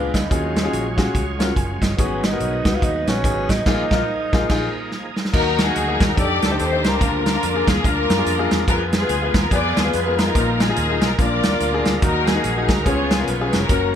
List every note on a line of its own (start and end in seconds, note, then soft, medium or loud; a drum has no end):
0.00 0.10 C#2 medium
0.00 5.30 G#3 medium
0.00 0.29 A#3 medium
0.00 0.19 B3 medium
0.00 0.19 D4 medium
0.00 0.29 D4 medium
0.00 0.30 D4 medium
0.00 0.16 F4 medium
0.00 0.20 G#4 medium
0.00 0.29 G#4 medium
0.00 0.20 B4 medium
0.00 0.29 B4 medium
0.00 0.30 B4 medium
0.14 0.28 D2 medium
0.14 0.98 D#4 medium
0.14 kick medium
0.14 snare medium
0.14 closed hi-hat medium
0.30 0.67 D#2 medium
0.30 0.94 D#3 medium
0.30 3.63 F#3 medium
0.30 1.96 F#3 medium
0.30 0.55 C#4 medium
0.30 1.97 C#4 medium
0.30 1.95 C#4 medium
0.30 0.55 F4 medium
0.30 1.97 F4 medium
0.30 1.96 F4 medium
0.30 0.56 F#4 medium
0.30 1.95 G#4 medium
0.30 0.56 G#4 medium
0.30 kick loud
0.30 closed hi-hat medium
0.56 snare loud
0.56 closed hi-hat medium
0.63 0.84 C#4 medium
0.63 0.85 F4 medium
0.63 0.85 F#4 medium
0.63 0.85 G#4 medium
0.72 1.08 A#1 medium
0.72 closed hi-hat medium
0.97 1.22 C#4 medium
0.97 1.23 F4 medium
0.97 1.23 F#4 medium
0.97 1.23 G#4 medium
0.97 kick medium
0.97 snare loud
0.97 closed hi-hat medium
1.15 1.50 C#2 medium
1.15 kick medium
1.15 closed hi-hat medium
1.39 1.50 C#4 medium
1.39 1.51 F4 medium
1.39 1.51 F#4 medium
1.39 1.51 A#4 medium
1.39 snare loud
1.39 closed hi-hat medium
1.56 1.78 F#1 medium
1.56 1.80 G#5 medium
1.56 kick medium
1.56 closed hi-hat medium
1.82 1.96 G1 medium
1.82 2.21 D#5 medium
1.82 kick medium
1.82 snare loud
1.82 closed hi-hat medium
1.97 2.34 G#1 medium
1.97 2.61 G#2 medium
1.97 3.63 F#3 medium
1.97 2.23 B3 medium
1.97 3.63 B3 medium
1.97 3.65 B3 medium
1.97 2.26 C#4 medium
1.97 2.23 D#4 medium
1.97 3.62 D#4 medium
1.97 5.31 D#4 medium
1.97 2.23 F#4 medium
1.97 3.63 G#4 medium
1.97 2.24 G#4 medium
1.97 kick loud
1.97 closed hi-hat medium
2.23 2.77 D#4 medium
2.23 snare loud
2.23 closed hi-hat medium
2.31 2.53 B3 medium
2.31 2.53 D#4 medium
2.31 2.53 F#4 medium
2.31 2.53 A#4 medium
2.40 2.62 B1 medium
2.40 closed hi-hat medium
2.65 2.80 C#2 medium
2.65 2.90 B3 medium
2.65 2.91 D#4 medium
2.65 2.91 F#4 medium
2.65 2.91 B4 medium
2.65 kick medium
2.65 snare loud
2.65 closed hi-hat medium
2.75 2.85 F4 medium
2.82 3.04 D#2 medium
2.82 3.10 D#4 medium
2.82 kick loud
2.82 closed hi-hat medium
3.07 3.22 A#1 medium
3.07 3.18 B3 medium
3.07 3.51 C#4 medium
3.07 3.18 D#4 medium
3.07 3.19 F#4 medium
3.07 3.19 B4 medium
3.07 snare loud
3.07 closed hi-hat medium
3.23 3.45 G#1 medium
3.23 3.54 B3 medium
3.23 3.55 D#4 medium
3.23 3.55 F#4 medium
3.23 3.55 G#4 medium
3.23 kick loud
3.23 closed hi-hat medium
3.49 3.64 A1 medium
3.49 4.92 D#4 medium
3.49 kick medium
3.49 snare loud
3.49 closed hi-hat medium
3.66 3.83 A#1 medium
3.66 3.84 A#2 medium
3.66 5.32 F3 medium
3.66 5.31 F3 medium
3.66 3.83 A#3 medium
3.66 5.32 A#3 medium
3.66 5.31 A#3 soft
3.66 3.83 D#4 medium
3.66 5.30 D#4 medium
3.66 3.84 F4 loud
3.66 3.72 G4 soft
3.66 3.84 G#4 medium
3.66 kick loud
3.66 snare loud
3.66 crash medium
3.71 5.33 G#4 medium
3.91 4.03 A#1 medium
3.91 4.02 A#3 medium
3.91 4.03 D#4 medium
3.91 4.03 F4 medium
3.91 4.03 A#4 medium
3.91 kick loud
3.91 snare loud
4.32 4.45 A#1 medium
4.32 4.44 A#3 medium
4.32 4.45 D#4 medium
4.32 4.45 F4 medium
4.32 4.45 G#4 medium
4.32 kick loud
4.32 snare loud
4.49 4.67 A#1 medium
4.49 4.66 A#3 medium
4.49 4.67 D#4 medium
4.49 4.67 F4 medium
4.49 4.68 G#4 medium
4.49 kick loud
4.49 snare medium
4.49 crash medium
4.91 snare medium
5.16 snare medium
5.25 snare medium
5.33 5.69 D#2 loud
5.33 5.96 D#3 medium
5.33 6.16 F#3 medium
5.33 5.58 A#3 medium
5.33 6.16 A#3 medium
5.33 5.58 D#4 medium
5.33 6.16 D#4 medium
5.33 5.59 D#4 medium
5.33 5.59 F#4 medium
5.33 6.14 F#4 medium
5.33 5.59 A#4 medium
5.33 6.16 A#4 medium
5.33 5.58 A#4 loud
5.33 kick loud
5.33 crash loud
5.58 6.14 D#4 medium
5.58 6.02 G#4 medium
5.58 snare loud
5.58 closed hi-hat medium
5.66 5.79 A#3 medium
5.66 5.79 D#4 medium
5.66 5.80 F#4 medium
5.66 5.80 A#4 medium
5.76 5.97 D2 medium
5.76 closed hi-hat medium
5.86 6.08 A#3 medium
5.86 6.09 D#4 medium
5.86 6.09 F#4 medium
5.86 6.09 G#4 medium
6.00 6.15 D#2 medium
6.00 6.18 A#4 loud
6.00 kick loud
6.00 snare loud
6.00 closed hi-hat medium
6.16 6.39 F2 loud
6.16 7.00 G3 medium
6.16 6.41 D4 medium
6.16 7.00 D4 medium
6.16 6.42 D#4 medium
6.16 7.00 D#4 medium
6.16 6.42 G4 medium
6.16 6.98 G4 medium
6.16 6.42 A4 medium
6.16 7.00 A4 medium
6.16 6.43 A4 medium
6.16 kick loud
6.16 closed hi-hat medium
6.20 6.44 D5 loud
6.42 6.57 D2 medium
6.42 6.60 A4 medium
6.42 snare loud
6.42 closed hi-hat medium
6.50 6.63 D4 medium
6.50 6.63 D#4 medium
6.50 6.63 G4 medium
6.50 6.64 C5 medium
6.59 6.85 D#2 loud
6.59 6.86 C5 loud
6.59 closed hi-hat medium
6.71 6.92 D4 medium
6.71 6.93 D#4 medium
6.71 6.93 G4 medium
6.71 6.93 C5 medium
6.84 6.99 C#2 medium
6.84 7.25 D4 medium
6.84 7.26 F4 medium
6.84 7.26 A#4 loud
6.84 snare loud
6.84 closed hi-hat medium
7.00 7.37 D2 medium
7.00 7.64 D3 medium
7.00 8.65 F3 medium
7.00 7.26 A#3 medium
7.00 8.65 A#3 medium
7.00 8.65 D4 medium
7.00 7.26 D4 medium
7.00 7.26 F4 medium
7.00 8.65 A#4 medium
7.00 7.27 A#4 medium
7.00 kick loud
7.00 closed hi-hat medium
7.26 7.84 D4 medium
7.26 7.85 F4 medium
7.26 7.66 A#4 loud
7.26 snare loud
7.26 closed hi-hat medium
7.33 7.46 A#3 medium
7.33 7.47 D4 medium
7.33 7.47 F4 medium
7.33 7.47 A#4 medium
7.43 7.64 F2 medium
7.43 closed hi-hat medium
7.54 7.76 A#3 medium
7.54 7.76 D4 medium
7.54 7.76 F4 medium
7.54 7.77 G#4 medium
7.67 7.82 D#2 medium
7.67 7.85 G#4 loud
7.67 kick loud
7.67 snare loud
7.67 closed hi-hat medium
7.83 8.06 D2 medium
7.83 8.09 A#3 medium
7.83 8.09 D4 medium
7.83 8.65 D4 medium
7.83 8.09 F4 medium
7.83 8.65 F4 medium
7.83 8.10 A#4 medium
7.83 8.52 A#4 loud
7.83 kick loud
7.83 closed hi-hat medium
8.10 8.24 F#2 loud
8.10 snare loud
8.10 closed hi-hat medium
8.17 8.30 A#3 medium
8.17 8.30 D4 medium
8.17 8.31 F4 medium
8.17 8.31 G#4 medium
8.26 8.47 F2 medium
8.26 closed hi-hat medium
8.37 8.59 A#3 medium
8.37 8.59 D4 medium
8.37 8.60 F4 medium
8.37 8.60 G#4 medium
8.51 8.66 E2 medium
8.51 snare loud
8.51 closed hi-hat medium
8.67 9.03 F2 loud
8.67 10.32 F3 medium
8.67 10.32 G#3 medium
8.67 8.93 B3 medium
8.67 10.32 B3 medium
8.67 8.93 F4 medium
8.67 10.32 G#4 medium
8.67 8.93 G#4 medium
8.67 8.80 A#4 loud
8.67 8.94 B4 medium
8.67 kick loud
8.67 closed hi-hat loud
8.93 9.73 B3 medium
8.93 9.51 F4 medium
8.93 9.32 G#4 medium
8.93 snare loud
8.93 closed hi-hat medium
9.01 9.14 B3 medium
9.01 9.14 F4 medium
9.01 9.14 G#4 medium
9.01 9.15 B4 medium
9.09 9.31 D2 loud
9.09 closed hi-hat medium
9.21 9.43 B3 medium
9.21 9.43 F4 medium
9.21 9.43 G#4 medium
9.21 9.44 B4 medium
9.34 9.49 D#2 medium
9.34 9.52 A#4 loud
9.34 kick loud
9.34 snare loud
9.34 closed hi-hat medium
9.51 9.73 F2 loud
9.51 9.76 B3 medium
9.51 9.77 F4 medium
9.51 10.18 F4 medium
9.51 9.76 G#4 medium
9.51 9.77 G#4 medium
9.51 9.77 B4 medium
9.51 9.77 D5 loud
9.51 kick loud
9.51 closed hi-hat medium
9.77 9.91 D#2 medium
9.77 9.94 G#4 medium
9.77 snare loud
9.77 closed hi-hat medium
9.84 9.97 B3 medium
9.84 9.98 F4 medium
9.84 9.98 G#4 medium
9.84 9.98 B4 medium
9.93 10.29 F2 medium
9.93 10.17 B4 medium
9.93 closed hi-hat medium
10.05 10.27 B3 medium
10.05 10.27 F4 medium
10.05 10.27 G#4 medium
10.05 10.27 A#4 medium
10.18 10.59 D#4 medium
10.18 10.60 F4 medium
10.18 10.61 A#4 medium
10.18 snare loud
10.18 closed hi-hat medium
10.34 10.71 A#1 medium
10.34 10.98 A#2 medium
10.34 11.17 F3 medium
10.34 10.60 A#3 medium
10.34 11.17 A#3 medium
10.34 10.60 D#4 medium
10.34 11.17 D#4 medium
10.34 10.60 F4 medium
10.34 11.17 A#4 medium
10.34 10.61 A#4 medium
10.34 kick loud
10.34 closed hi-hat medium
10.60 11.15 D#4 medium
10.60 11.15 F4 medium
10.60 11.02 G#4 loud
10.60 snare loud
10.60 closed hi-hat medium
10.68 10.81 A#3 medium
10.68 10.81 D#4 medium
10.68 10.81 F4 medium
10.68 10.82 G#4 medium
10.76 11.02 D#2 loud
10.76 closed hi-hat medium
10.89 11.10 A#3 medium
10.89 11.10 D#4 medium
10.89 11.11 F4 medium
10.89 11.11 G#4 medium
11.01 11.16 B1 loud
11.01 11.19 A#4 medium
11.01 snare loud
11.01 closed hi-hat medium
11.18 11.40 A#1 loud
11.18 11.82 A#2 medium
11.18 12.01 F3 medium
11.18 11.44 A#3 medium
11.18 12.01 A#3 medium
11.18 11.44 D4 medium
11.18 12.01 D4 medium
11.18 11.44 F4 medium
11.18 11.99 F4 medium
11.18 12.01 A#4 medium
11.18 11.44 A#4 medium
11.18 11.99 A#4 medium
11.18 11.86 D5 loud
11.18 kick loud
11.18 closed hi-hat medium
11.43 11.59 D#2 medium
11.43 snare loud
11.43 closed hi-hat medium
11.51 11.64 A#3 medium
11.51 11.65 D4 medium
11.51 11.65 F4 medium
11.51 11.65 A#4 medium
11.60 11.82 D2 medium
11.60 closed hi-hat medium
11.72 11.93 A#3 medium
11.72 11.94 D4 medium
11.72 11.94 F4 medium
11.72 11.95 G#4 loud
11.85 12.00 D2 medium
11.85 snare loud
11.85 closed hi-hat medium
12.02 12.38 D#2 loud
12.02 12.65 D#3 medium
12.02 12.85 F#3 medium
12.02 12.27 A#3 medium
12.02 12.85 A#3 medium
12.02 12.27 D#4 medium
12.02 12.85 D#4 medium
12.02 12.27 D#4 medium
12.02 12.28 F#4 medium
12.02 12.83 F#4 medium
12.02 12.09 G#4 medium
12.02 12.28 A#4 medium
12.02 12.26 A#4 loud
12.02 kick loud
12.02 closed hi-hat medium
12.08 12.87 A#4 medium
12.27 12.82 D#4 medium
12.27 12.69 G#4 medium
12.27 snare loud
12.27 closed hi-hat medium
12.35 12.48 A#3 medium
12.35 12.48 D#4 medium
12.35 12.49 F#4 medium
12.35 12.49 A#4 medium
12.44 12.66 A#1 medium
12.44 closed hi-hat medium
12.56 12.77 A#3 medium
12.56 12.78 D#4 medium
12.56 12.78 F#4 medium
12.56 12.78 G#4 medium
12.68 12.83 D2 medium
12.68 12.86 A#4 loud
12.68 kick loud
12.68 snare loud
12.68 closed hi-hat medium
12.85 13.21 C#2 loud
12.85 13.49 C#3 medium
12.85 13.68 F3 medium
12.85 13.10 B3 medium
12.85 13.69 B3 medium
12.85 13.11 C#4 medium
12.85 13.68 C#4 medium
12.85 13.11 F4 medium
12.85 13.66 F4 medium
12.85 13.10 G#4 medium
12.85 13.11 G#4 medium
12.85 13.68 G#4 medium
12.85 13.11 C#5 loud
12.85 kick loud
12.85 closed hi-hat medium
13.11 13.28 G#4 medium
13.11 snare loud
13.11 closed hi-hat medium
13.19 13.32 B3 medium
13.19 13.32 C#4 medium
13.19 13.32 F4 medium
13.19 13.33 A#4 medium
13.27 13.49 B1 medium
13.27 13.53 B4 medium
13.27 closed hi-hat medium
13.40 13.61 B3 medium
13.40 13.61 C#4 medium
13.40 13.61 F4 medium
13.40 13.62 G#4 medium
13.53 13.67 F1 medium
13.53 13.94 C#4 medium
13.53 13.94 F#4 medium
13.53 13.94 A#4 loud
13.53 snare loud
13.53 closed hi-hat medium
13.68 13.95 F#1 loud
13.68 13.95 F#3 medium
13.68 13.94 A#3 medium
13.68 13.95 A#3 medium
13.68 13.94 C#4 medium
13.68 13.95 C#4 medium
13.68 13.95 F#4 medium
13.68 13.95 A#4 medium
13.68 kick loud
13.68 closed hi-hat medium